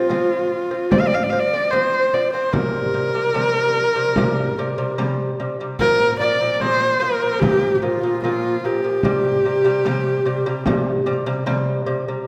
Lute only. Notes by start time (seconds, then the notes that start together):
0.10 F3 C4
0.71 F3 C4
0.92 F3 C4
1.32 F3 C4
1.53 F3 C4
1.73 F3 C4
2.14 F3 C4
2.33 F3 C4
2.53 C3 G3
2.94 C3 G3
3.15 C3 G3
3.34 C3 G3
3.96 C3 G3
4.17 C3 G3
4.58 C3 G3
4.78 C3 G3
4.98 C3 G3
5.40 C3 G3
5.60 C3 G3
5.81 A#2 F3
6.20 A#2 F3
6.41 A#2 F3
6.62 A#2 F3
7.01 A#2 F3
7.22 A#2 F3
7.42 A#2 F3
7.82 A#2 F3
8.03 A#2 F3
8.24 A#2 F3
8.64 A#2 F3
8.84 A#2 F3
9.05 C3 G3
9.45 C3 G3
9.64 C3 G3
9.86 C3 G3
10.26 C3 G3
10.46 C3 G3
10.67 C3 G3
11.06 C3 G3
11.26 C3 G3
11.46 C3 G3
11.86 C3 G3
12.08 C3 G3